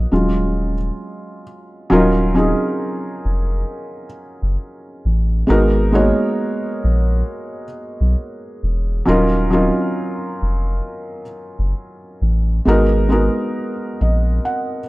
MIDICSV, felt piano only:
0, 0, Header, 1, 2, 480
1, 0, Start_track
1, 0, Key_signature, -6, "minor"
1, 0, Tempo, 895522
1, 1018, Time_signature, 4, 2, 24, 8
1, 7980, End_track
2, 0, Start_track
2, 0, Title_t, "Felt piano"
2, 0, Program_c, 0, 0
2, 0, Control_c, 0, 64, 127
2, 0, Note_on_c, 0, 58, 59
2, 0, Note_on_c, 0, 59, 56
2, 0, Note_on_c, 0, 66, 65
2, 0, Note_on_c, 0, 75, 100
2, 62, Note_on_c, 0, 54, 54
2, 64, Control_c, 0, 64, 0
2, 64, Note_on_c, 0, 56, 44
2, 65, Note_off_c, 0, 66, 0
2, 66, Note_off_c, 0, 58, 0
2, 66, Note_on_c, 0, 61, 49
2, 68, Note_off_c, 0, 59, 0
2, 69, Note_on_c, 0, 65, 64
2, 144, Control_c, 0, 64, 127
2, 399, Note_off_c, 0, 54, 0
2, 399, Note_off_c, 0, 56, 0
2, 401, Note_off_c, 0, 61, 0
2, 402, Note_off_c, 0, 65, 0
2, 761, Note_off_c, 0, 75, 0
2, 1017, Note_on_c, 0, 54, 103
2, 1022, Note_on_c, 0, 61, 87
2, 1026, Control_c, 0, 64, 0
2, 1026, Note_on_c, 0, 63, 84
2, 1029, Note_on_c, 0, 65, 90
2, 1034, Note_on_c, 0, 70, 97
2, 1122, Control_c, 0, 64, 127
2, 1246, Note_off_c, 0, 54, 0
2, 1248, Note_off_c, 0, 61, 0
2, 1250, Note_off_c, 0, 63, 0
2, 1252, Note_off_c, 0, 65, 0
2, 1254, Note_off_c, 0, 70, 0
2, 1256, Note_on_c, 0, 54, 76
2, 1259, Note_on_c, 0, 61, 77
2, 1263, Note_on_c, 0, 63, 80
2, 1268, Note_on_c, 0, 65, 75
2, 1272, Note_on_c, 0, 68, 93
2, 2169, Note_off_c, 0, 54, 0
2, 2171, Note_off_c, 0, 61, 0
2, 2173, Note_off_c, 0, 63, 0
2, 2175, Note_off_c, 0, 65, 0
2, 2177, Note_off_c, 0, 68, 0
2, 2932, Note_on_c, 0, 56, 90
2, 2936, Note_on_c, 0, 59, 80
2, 2939, Note_on_c, 0, 63, 89
2, 2945, Control_c, 0, 64, 0
2, 2945, Note_on_c, 0, 66, 89
2, 2948, Note_on_c, 0, 70, 106
2, 3035, Control_c, 0, 64, 127
2, 3163, Note_off_c, 0, 56, 0
2, 3165, Note_off_c, 0, 59, 0
2, 3167, Note_off_c, 0, 63, 0
2, 3169, Note_off_c, 0, 66, 0
2, 3171, Note_off_c, 0, 70, 0
2, 3175, Note_on_c, 0, 56, 91
2, 3178, Note_on_c, 0, 58, 64
2, 3184, Note_on_c, 0, 63, 75
2, 3185, Note_on_c, 0, 66, 76
2, 3190, Note_on_c, 0, 73, 94
2, 3214, Note_on_c, 0, 59, 66
2, 3220, Note_off_c, 0, 58, 0
2, 4088, Note_off_c, 0, 56, 0
2, 4093, Note_off_c, 0, 63, 0
2, 4094, Note_off_c, 0, 66, 0
2, 4096, Note_off_c, 0, 73, 0
2, 4108, Note_off_c, 0, 59, 0
2, 4853, Note_on_c, 0, 54, 91
2, 4856, Note_on_c, 0, 61, 89
2, 4860, Note_on_c, 0, 63, 85
2, 4865, Control_c, 0, 64, 0
2, 4865, Note_on_c, 0, 65, 95
2, 4869, Note_on_c, 0, 70, 112
2, 4958, Control_c, 0, 64, 127
2, 5083, Note_off_c, 0, 54, 0
2, 5085, Note_off_c, 0, 61, 0
2, 5087, Note_off_c, 0, 63, 0
2, 5090, Note_off_c, 0, 65, 0
2, 5092, Note_off_c, 0, 70, 0
2, 5094, Note_on_c, 0, 54, 88
2, 5100, Note_on_c, 0, 61, 77
2, 5105, Note_on_c, 0, 63, 80
2, 5108, Note_on_c, 0, 65, 88
2, 5111, Note_on_c, 0, 70, 90
2, 6008, Note_off_c, 0, 54, 0
2, 6011, Note_off_c, 0, 61, 0
2, 6014, Note_off_c, 0, 63, 0
2, 6015, Note_off_c, 0, 65, 0
2, 6016, Note_off_c, 0, 70, 0
2, 6782, Note_on_c, 0, 56, 89
2, 6785, Control_c, 0, 64, 0
2, 6786, Note_on_c, 0, 59, 82
2, 6791, Note_on_c, 0, 63, 83
2, 6794, Note_on_c, 0, 66, 92
2, 6798, Note_on_c, 0, 70, 110
2, 6877, Control_c, 0, 64, 127
2, 7007, Note_off_c, 0, 56, 0
2, 7010, Note_off_c, 0, 59, 0
2, 7013, Note_off_c, 0, 63, 0
2, 7014, Note_off_c, 0, 66, 0
2, 7015, Note_on_c, 0, 56, 81
2, 7016, Note_off_c, 0, 70, 0
2, 7021, Note_on_c, 0, 59, 78
2, 7024, Note_on_c, 0, 63, 68
2, 7026, Note_on_c, 0, 66, 71
2, 7032, Note_on_c, 0, 70, 87
2, 7509, Note_on_c, 0, 75, 66
2, 7727, Note_off_c, 0, 75, 0
2, 7745, Note_on_c, 0, 78, 73
2, 7929, Note_off_c, 0, 56, 0
2, 7931, Note_off_c, 0, 59, 0
2, 7933, Note_off_c, 0, 63, 0
2, 7934, Note_off_c, 0, 66, 0
2, 7937, Note_off_c, 0, 70, 0
2, 7965, Note_off_c, 0, 78, 0
2, 7980, End_track
0, 0, End_of_file